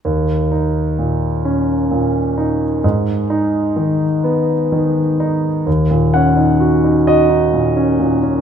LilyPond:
\new Staff \with { instrumentName = "Grand piano" } { \time 6/8 \key ees \minor \tempo 4. = 43 << { r2. | r2. | r8 ges''4 ees''4. | } \\ { ees,8 ees'8 bes,8 des'8 bes,8 ees'8 | aes,8 ees'8 ees8 ces'8 ees8 ees'8 | ees,16 bes,16 des'16 ees'16 ges'16 ees'16 ges'16 ees'16 bes,16 des'16 bes,16 des'16 | } >> }